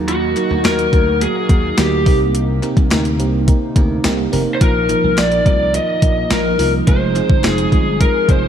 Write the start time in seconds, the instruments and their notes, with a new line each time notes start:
Already playing: slap bass D#2, fm electric piano F#3 A#3 D#4 F#4 A#4 F#5, analog synth pad A#3 D#4 F#4
0.08 lead electric guitar F#4, closed hi-hat
0.36 fm electric piano F#3 A#3 D#4 F#4 A#4, clap, closed hi-hat
0.51 slap bass D2
0.64 slap bass D#2, fm electric piano F#3 A#3 D#4 F#4 A#4, lead electric guitar A#4, snare, clap, closed hi-hat, tambourine
0.79 closed hi-hat
0.92 slap bass D2, fm electric piano F#3 A#3 D#4 F#4 A#4, kick, closed hi-hat
1.21 fm electric piano F#3 A#3 D#4 F#4 A#4, lead electric guitar G#4, closed hi-hat
1.49 slap bass D#2, fm electric piano F#3 A#3 D#4 F#4 A#4, kick, closed hi-hat
1.77 slap bass D2, fm electric piano F#3 A#3 D#4 F#4 A#4, lead electric guitar G4, snare, clap, closed hi-hat, tambourine
2.06 slap bass C2, analog synth pad C3 D#4, fm electric piano A#3 C4 D#4 G4 A#4, kick, open hi-hat
2.35 closed hi-hat
2.62 fm electric piano A#3 C4 D#4 G4 A#4, clap, closed hi-hat
2.77 slap bass C2, kick, closed hi-hat
2.91 slap bass D2, fm electric piano A#3 C4 D#4 G4 A#4, snare, clap, closed hi-hat, tambourine
3.05 closed hi-hat
3.19 slap bass C2, fm electric piano A#3 C4 D#4 G4 A#4, closed hi-hat
3.47 fm electric piano A#3 C4 D#4 G4 A#4, kick, closed hi-hat
3.76 slap bass D2, fm electric piano A#3 C4 D#4 G4 A#4, kick, closed hi-hat
4.04 slap bass C2, fm electric piano A#3 C4 D#4 G4 A#4, snare, clap, closed hi-hat, tambourine
4.32 slap bass F1, fm electric piano A#3 C4 D#4 G4 A#4, open hi-hat
4.55 lead electric guitar C5
4.61 slap bass A#1, fm electric piano F3 A#3 D#4 F4 A#4, analog synth pad F3, lead electric guitar A#4, kick, closed hi-hat
4.89 fm electric piano F3 A#3 D#4 F4 A#4, clap, closed hi-hat
5.04 slap bass C2
5.17 slap bass A#1, fm electric piano F3 A#3 D#4 F4 A#4, lead electric guitar D5, snare, clap, closed hi-hat, tambourine
5.32 closed hi-hat
5.45 slap bass C2, fm electric piano F3 A#3 D#4 F4 A#4, lead electric guitar D5, kick, closed hi-hat
5.74 fm electric piano F3 A#3 D#4 F4 A#4, lead electric guitar D#5, closed hi-hat
6.02 slap bass A#1, fm electric piano F3 A#3 D#4 F4 A#4, kick, closed hi-hat
6.30 slap bass A#1, fm electric piano F3 A#3 D#4 F4 A#4, lead electric guitar A#4, snare, clap, closed hi-hat, tambourine
6.58 slap bass C2, fm electric piano F3 A#3 D#4 F4 A#4, open hi-hat
6.87 slap bass F1, analog synth pad F3 G#4, fm electric piano G#3 C4 D#4 F4 G#4, lead electric guitar C5, kick, closed hi-hat
7.15 fm electric piano G#3 C4 D#4 F4 G#4, clap, closed hi-hat
7.30 slap bass G1, kick
7.43 slap bass F1, fm electric piano G#3 C4 D#4 F4 G#4, lead electric guitar G#4, snare, clap, closed hi-hat, tambourine
7.58 closed hi-hat
7.72 slap bass G1, fm electric piano G#3 C4 D#4 F4 G#4, kick, closed hi-hat
8.00 fm electric piano G#3 C4 D#4 F4 G#4, lead electric guitar A#4, kick, closed hi-hat
8.28 slap bass F1, fm electric piano G#3 C4 D#4 F4 G#4, lead electric guitar C5, kick, closed hi-hat